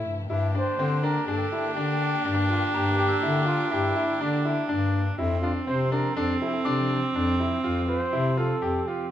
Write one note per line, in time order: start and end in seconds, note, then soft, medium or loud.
0.00 0.26 F3 medium
0.00 0.26 A3 medium
0.00 0.12 E4 medium
0.00 0.27 E4 medium
0.05 0.27 G2 medium
0.29 0.70 G2 medium
0.29 5.16 D3 medium
0.29 5.16 A#3 medium
0.29 5.19 D4 loud
0.29 0.45 E4 medium
0.29 5.16 G4 medium
0.55 0.70 D4 medium
0.59 1.06 C5 loud
0.78 1.19 D3 medium
0.78 0.94 C4 medium
1.03 1.19 D4 medium
1.03 1.27 A#4 medium
1.26 1.47 G2 medium
1.26 1.43 D4 medium
1.26 1.73 A4 medium
1.52 1.67 E4 medium
1.75 2.17 D3 medium
1.75 2.07 D4 medium
1.75 2.21 G4 medium
2.02 2.58 G5 medium
2.25 2.66 G2 medium
2.25 2.41 D4 medium
2.50 2.65 F4 medium
2.74 3.15 G2 medium
2.74 2.90 G4 medium
2.74 3.31 A#5 medium
2.91 3.45 D6 soft
2.96 3.48 G4 loud
2.96 3.14 G4 medium
3.09 3.61 E6 soft
3.23 3.64 D3 medium
3.23 3.38 E4 medium
3.46 3.62 F4 medium
3.46 3.73 F4 medium
3.71 3.93 G2 medium
3.71 4.23 E4 medium
3.71 3.87 G4 medium
3.96 4.12 E4 medium
4.21 4.62 D3 medium
4.21 4.36 D4 medium
4.21 4.70 D4 medium
4.45 4.61 E4 medium
4.69 5.11 G2 medium
4.69 5.00 D4 medium
5.18 5.59 F2 loud
5.18 9.11 F3 medium
5.18 9.11 C4 loud
5.18 9.11 C4 medium
5.18 5.34 E4 medium
5.42 5.59 D4 medium
5.42 5.53 F4 medium
5.67 6.09 C3 medium
5.67 5.83 C4 medium
5.67 5.90 C5 loud
5.92 6.07 D4 medium
5.92 6.15 A#4 medium
6.16 6.37 F2 medium
6.16 6.32 D4 medium
6.16 6.39 A4 medium
6.40 6.57 E4 medium
6.40 6.50 A4 medium
6.48 6.56 G4 medium
6.54 6.90 A4 medium
6.65 7.07 C3 medium
6.65 6.96 D4 medium
6.65 7.22 D6 medium
7.14 7.55 F2 medium
7.14 7.31 D4 medium
7.40 7.55 E4 medium
7.64 8.05 F2 medium
7.64 7.79 F4 medium
7.88 8.04 F4 medium
7.88 8.40 C5 loud
8.13 8.54 C3 medium
8.13 8.28 E4 medium
8.37 8.53 F4 medium
8.37 8.89 A4 medium
8.62 8.82 F2 medium
8.62 8.77 G4 medium
8.87 9.03 F4 medium
8.87 9.11 G4 medium